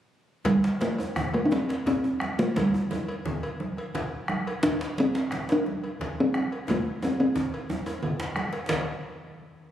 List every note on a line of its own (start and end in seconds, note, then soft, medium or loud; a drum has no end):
0.45 0.83 G3 medium
0.45 bombo rim soft
0.45 bombo low medium
0.45 cowbell medium
0.45 djembe slap medium
0.45 djembe bass medium
0.45 low conga medium
0.63 bombo rim soft
0.63 djembe slap soft
0.63 djembe slap medium
0.81 1.34 A3 medium
0.81 bombo rim soft
0.81 cowbell soft
0.81 djembe slap medium
0.81 djembe tone medium
0.81 high conga medium
0.98 cowbell soft
0.98 djembe tone medium
1.16 bombo rim medium
1.16 bombo low medium
1.16 djembe slap medium
1.16 djembe tone medium
1.16 djembe bass medium
1.16 low conga medium
1.33 1.47 A3 medium
1.33 bombo rim soft
1.33 cowbell soft
1.45 1.54 D4 medium
1.51 1.87 C4 medium
1.51 djembe slap medium
1.51 djembe tone medium
1.51 high conga medium
1.69 bombo rim soft
1.69 cowbell soft
1.69 djembe slap medium
1.86 2.41 C4 medium
1.86 bombo low medium
1.86 cowbell soft
1.86 djembe slap medium
1.86 djembe tone medium
1.86 djembe bass medium
2.04 djembe tone medium
2.20 bombo rim medium
2.20 high conga medium
2.20 djembe tone medium
2.39 2.58 A3 medium
2.39 cowbell soft
2.39 djembe slap soft
2.39 djembe slap medium
2.56 3.61 G3 medium
2.56 bombo rim soft
2.56 bombo low medium
2.56 cowbell medium
2.56 djembe slap medium
2.56 low conga medium
2.56 djembe bass medium
2.74 bombo rim soft
2.74 djembe slap soft
2.74 djembe tone medium
2.91 bombo rim soft
2.91 cowbell soft
2.91 high conga medium
2.91 djembe tone medium
3.08 cowbell soft
3.25 bombo low medium
3.25 djembe slap medium
3.25 djembe bass medium
3.25 low conga medium
3.42 bombo rim soft
3.42 cowbell soft
3.60 high conga medium
3.60 djembe tone medium
3.77 bombo rim soft
3.77 cowbell soft
3.94 bombo low medium
3.94 cowbell soft
3.94 djembe slap medium
3.94 low conga medium
3.94 djembe bass medium
4.28 bombo rim medium
4.28 high conga medium
4.28 djembe tone medium
4.47 cowbell soft
4.47 djembe slap soft
4.63 5.02 D4 loud
4.63 bombo rim soft
4.63 bombo low medium
4.63 cowbell medium
4.63 djembe slap medium
4.63 low conga medium
4.63 djembe bass medium
4.81 bombo rim soft
4.81 djembe slap medium
4.98 5.54 C4 loud
4.98 bombo rim soft
4.98 cowbell soft
4.98 djembe slap medium
4.98 high conga medium
4.98 djembe tone medium
5.15 cowbell soft
5.15 djembe slap medium
5.31 bombo rim medium
5.31 bombo low medium
5.31 djembe slap medium
5.31 djembe bass medium
5.31 low conga medium
5.49 6.22 D4 medium
5.49 bombo rim soft
5.49 cowbell soft
5.49 djembe slap medium
5.66 djembe tone medium
5.66 high conga medium
5.83 bombo rim soft
5.83 cowbell soft
5.99 bombo low medium
5.99 cowbell soft
5.99 djembe slap medium
5.99 djembe bass medium
5.99 low conga medium
6.20 6.70 C4 medium
6.34 bombo rim medium
6.34 djembe tone medium
6.34 high conga medium
6.52 cowbell soft
6.52 djembe slap soft
6.68 7.01 A3 medium
6.68 bombo low medium
6.68 cowbell medium
6.68 djembe slap medium
6.68 djembe tone medium
6.68 djembe bass medium
6.68 low conga medium
6.86 djembe slap soft
7.02 7.19 C4 medium
7.02 cowbell soft
7.02 djembe tone medium
7.02 high conga medium
7.02 djembe tone medium
7.20 7.66 C4 medium
7.20 cowbell soft
7.35 bombo low medium
7.35 djembe slap medium
7.35 djembe tone medium
7.35 djembe bass medium
7.35 low conga medium
7.54 cowbell soft
7.70 djembe tone medium
7.70 high conga medium
7.70 djembe tone loud
7.86 cowbell soft
7.86 high conga soft
7.86 djembe tone medium
7.86 djembe bass soft
8.03 bombo rim soft
8.03 bombo low medium
8.03 cowbell soft
8.03 high conga soft
8.03 low conga medium
8.03 djembe bass soft
8.20 djembe slap medium
8.20 djembe bass soft
8.36 bombo rim medium
8.36 djembe slap medium
8.36 high conga medium
8.53 cowbell soft
8.53 djembe slap medium
8.68 bombo low medium
8.68 cowbell medium
8.68 djembe slap loud
8.68 djembe bass medium
8.68 low conga medium